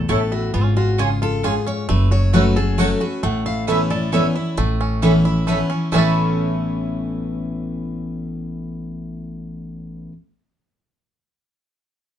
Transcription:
Already playing: five-string banjo A4
0.09 upright bass A1, steel-string acoustic guitar A2 A4, mandolin A3 E4 C#5 A5, five-string banjo A3
0.32 five-string banjo E4, steel-string acoustic guitar F#4
0.54 upright bass G#1, steel-string acoustic guitar G#2 F4, five-string banjo B3
0.63 five-string banjo C#4
0.76 five-string banjo F4, steel-string acoustic guitar F#4
0.98 steel-string acoustic guitar C#3 G#4, mandolin C#4 F4 C#5 G#5, five-string banjo F4
1.22 five-string banjo F4, steel-string acoustic guitar A4
1.43 steel-string acoustic guitar G#2 G#4, mandolin C#4 F4 C#5 G#5, five-string banjo F4
1.67 five-string banjo C#4, steel-string acoustic guitar C#5
1.89 upright bass F#1, steel-string acoustic guitar F#2 B4, five-string banjo A3
2.11 five-string banjo F#4, steel-string acoustic guitar C#5
2.33 steel-string acoustic guitar F#3 A3 C#4 F#4 B4, mandolin A3 F#4 C#5 F#5, five-string banjo A3
2.56 steel-string acoustic guitar C#4 F#4 G#4, five-string banjo A4
2.78 steel-string acoustic guitar F#3 A3 C#4 F#4 A4, mandolin A3 F#4 C#5 F#5, five-string banjo A3
3.01 steel-string acoustic guitar C#4 F#4 B4, five-string banjo F#4
3.23 upright bass A1, steel-string acoustic guitar A2 F#5, five-string banjo A3
3.46 five-string banjo E4, steel-string acoustic guitar F5
3.67 steel-string acoustic guitar E3 B3 C#4 E4 E5, five-string banjo A3, mandolin C#4 A4 E5 B5
3.90 steel-string acoustic guitar C#4 E4 D5, five-string banjo A4
4.12 steel-string acoustic guitar E3 B3 C#4 E4 C#5, five-string banjo A3, mandolin C#4 A4 E5 B5
4.36 steel-string acoustic guitar C#4 E4, five-string banjo E4
4.57 upright bass A1, steel-string acoustic guitar A2, five-string banjo A3
4.81 five-string banjo C#4
5.02 steel-string acoustic guitar E3 B3 C#4 E4, five-string banjo E3, mandolin C#4 A4 E5 B5
5.25 steel-string acoustic guitar C#4 E4, five-string banjo E4
5.47 steel-string acoustic guitar E3 B3 C#4 E4, five-string banjo A3, mandolin C#4 A4 E5 B5
5.70 five-string banjo C#4, steel-string acoustic guitar C#4 E4
5.92 upright bass A1, steel-string acoustic guitar A2 E3 B3 C#4 E4 C#5, five-string banjo A3 C#4, mandolin C#4 A4 E5 B5
5.96 five-string banjo E4 A4

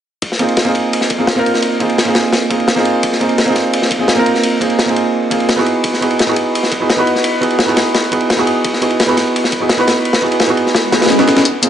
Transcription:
0.22 kick, ride
0.32 snare
0.39 felt piano A#3 C4 D#4 F4 G#4, ride
0.48 ride
0.57 snare, ride
0.65 felt piano A#3 C4 D#4 F4 G#4, ride
0.75 kick, ride
0.93 ride
1.01 snare
1.10 kick, ride
1.18 felt piano A#3 C4 D#4 F4 G#4
1.27 snare, ride
1.35 felt piano A#3 C4 D#4 F4 A#4
1.46 ride
1.54 snare
1.62 ride
1.80 felt piano A#3 C4 D#4 F4 G#4, kick, ride
1.89 ride
1.98 snare, ride
2.05 felt piano A#3 C4 D#4 F4 G#4
2.15 snare, ride
2.33 snare, ride
2.42 ride
2.50 felt piano A#3 C4 D#4 F4 G#4, kick, ride
2.60 ride
2.68 snare, ride
2.76 felt piano A#3 C4 D#4 F4 G#4, snare
2.85 ride
3.03 kick, ride
3.12 snare
3.20 felt piano A#3 C4 D#4 F4 G#4, ride
3.29 ride
3.38 snare, ride
3.45 felt piano A#3 C4 D#4 F4, ride
3.49 felt piano G#4
3.55 kick, snare, ride
3.73 ride
3.82 snare
3.91 kick, ride
3.99 felt piano A#3 C4 D#4 F4 G#4
4.08 snare, ride
4.15 felt piano A#3 C4 D#4 F4
4.19 felt piano A#4
4.26 ride
4.35 snare
4.43 ride
4.60 felt piano A#3 C4 D#4 F4 G#4, kick, ride
4.70 ride
4.79 snare, ride
4.86 felt piano A#3 C4 D#4 F4 G#4
4.96 ride
5.30 felt piano A#3 C4 D#4 F4 G#4, kick, ride
5.40 ride
5.49 snare, ride
5.56 felt piano B3 D#4 E4 F#4 G#4, snare
5.66 ride
5.84 kick, ride
5.93 snare
6.01 felt piano B3 D#4 E4 F#4 G#4, ride
6.11 ride
6.19 snare, ride
6.26 felt piano B3 D#4 E4 F#4 G#4, ride
6.36 kick, ride
6.55 ride
6.63 snare
6.72 kick, ride
6.80 felt piano B3 D#4 E4 F#4 G#4
6.90 snare, ride
6.96 felt piano B3 D#4 E4 F#4
7.00 felt piano B4
7.07 ride
7.15 snare
7.24 ride
7.41 felt piano B3 D#4 E4 F#4 G#4, kick, ride
7.50 ride
7.59 snare, ride
7.66 felt piano B3 D#4 E4 F#4
7.70 felt piano G#4
7.77 snare, ride
7.94 snare, ride
8.04 ride
8.11 felt piano B3 D#4 E4 F#4 G#4, kick, ride
8.20 ride
8.30 snare, ride
8.36 felt piano B3 D#4 E4 F#4 G#4, snare
8.47 ride
8.64 kick, ride
8.73 snare
8.81 felt piano B3 D#4 E4 F#4 G#4, ride
8.90 ride
9.00 snare, ride
9.07 felt piano B3 D#4 E4 F#4 G#4, ride
9.17 kick, snare, ride
9.36 ride
9.44 snare
9.52 kick, ride
9.60 felt piano B3 D#4 E4 F#4 G#4
9.69 snare, ride
9.77 felt piano B3 D#4 E4 F#4 B4
9.88 snare, ride
10.05 ride
10.13 snare, ride
10.21 felt piano B3 D#4 E4 F#4 G#4, kick
10.32 ride
10.40 snare, ride
10.47 felt piano B3 D#4 E4 F#4 G#4
10.57 ride
10.66 snare
10.75 snare, ride, swell
10.92 felt piano B3 D#4 E4 F#4 G#4, kick, snare, ride
11.01 snare, ride
11.06 snare, ride
11.10 snare, ride
11.18 felt piano B3 D#4 E4 F#4 G#4, snare
11.28 snare, ride
11.37 snare
11.45 closed hi-hat, riser
11.62 felt piano A#3 C4 D#4 F4 G#4, closed hi-hat, cabasa

